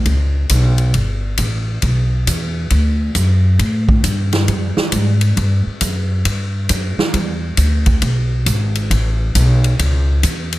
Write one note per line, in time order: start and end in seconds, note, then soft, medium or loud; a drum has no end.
0.06 0.49 C#2 medium
0.06 kick soft
0.06 ride medium
0.49 0.93 B1 loud
0.49 kick soft
0.49 hi-hat pedal medium
0.49 ride medium
0.78 ride soft
0.94 1.37 G1 medium
0.94 kick soft
0.94 ride medium
1.38 1.82 A1 medium
1.38 kick soft
1.38 hi-hat pedal medium
1.38 ride medium
1.82 2.26 B1 medium
1.82 kick soft
1.82 ride medium
2.27 2.70 E2 medium
2.27 kick soft
2.27 hi-hat pedal medium
2.27 ride medium
2.70 3.14 D2 medium
2.70 kick soft
2.70 ride medium
3.15 3.58 F#2 loud
3.15 kick soft
3.15 hi-hat pedal medium
3.15 ride medium
3.59 4.03 A2 medium
3.59 kick soft
3.59 ride medium
3.89 kick medium
4.04 4.47 G2 loud
4.04 kick soft
4.04 hi-hat pedal medium
4.04 ride medium
4.33 snare medium
4.33 ride medium
4.48 4.75 F#2 loud
4.48 kick soft
4.48 ride medium
4.77 muted upright bass stroke soft
4.77 snare medium
4.92 5.35 G#2 medium
4.92 kick soft
4.92 hi-hat pedal medium
4.92 ride medium
5.21 ride medium
5.37 5.64 G2 medium
5.37 kick soft
5.37 ride medium
5.66 muted upright bass stroke soft
5.81 6.24 F#2 medium
5.81 kick soft
5.81 hi-hat pedal medium
5.81 ride medium
6.25 6.68 G2 medium
6.25 kick soft
6.25 ride medium
6.69 6.97 F#2 loud
6.69 kick soft
6.69 hi-hat pedal medium
6.69 ride medium
6.97 muted upright bass stroke soft
6.97 snare medium
7.14 7.57 E2 medium
7.14 kick soft
7.14 ride medium
7.57 8.01 D2 medium
7.57 kick soft
7.57 hi-hat pedal medium
7.57 ride medium
7.86 kick soft
7.86 ride medium
8.02 8.45 B1 loud
8.02 kick soft
8.02 ride medium
8.46 8.89 G#1 medium
8.46 kick soft
8.46 hi-hat pedal medium
8.46 ride medium
8.75 ride medium
8.90 9.34 A1 medium
8.90 kick soft
8.90 ride medium
9.35 9.78 B1 loud
9.35 kick soft
9.35 hi-hat pedal medium
9.35 ride medium
9.64 ride soft
9.79 10.22 C#2 loud
9.79 kick soft
9.79 ride medium
10.23 10.59 E2 medium
10.23 kick soft
10.23 hi-hat pedal medium
10.23 ride medium
10.53 ride medium